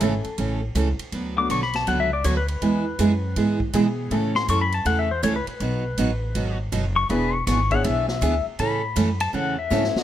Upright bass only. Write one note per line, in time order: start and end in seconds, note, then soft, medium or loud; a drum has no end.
0.01 0.23 G#1 medium
0.24 muted upright bass stroke soft
0.38 0.74 A1 medium
0.75 0.97 C#2 loud
0.99 muted upright bass stroke soft
1.12 1.49 D2 medium
1.50 1.86 B1 medium
1.87 2.24 C#2 medium
2.25 2.61 D2 loud
2.62 2.98 E2 medium
2.99 3.35 F#2 loud
3.36 3.73 G#2 medium
3.74 4.10 B2 loud
4.11 4.47 A2 medium
4.48 4.85 F#2 loud
4.86 5.22 E2 medium
5.23 5.45 C#2 loud
5.47 muted upright bass stroke soft
5.60 5.97 B1 medium
5.98 6.34 A1 medium
6.35 6.71 G#1 medium
6.72 7.09 F#1 loud
7.10 7.46 E1 medium
7.47 7.83 G#1 loud
7.84 8.21 B1 medium
8.22 8.44 D2 loud
8.46 muted upright bass stroke soft
8.59 8.95 A2 medium
8.96 9.33 F#2 loud
9.33 9.70 E2 medium
9.71 9.93 G#2 loud
9.95 muted upright bass stroke soft